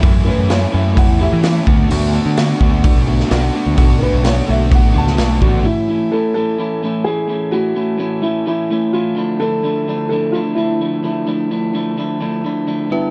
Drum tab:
HH |o---o---o---o---|o---o---o---o---|o---o---o---o---|----------------|
SD |----o-------o---|----o------oo---|----o------oo---|----------------|
BD |o-------o-----o-|------o-o-------|o-------o-----o-|----------------|

HH |----------------|----------------|----------------|
SD |----------------|----------------|----------------|
BD |----------------|----------------|----------------|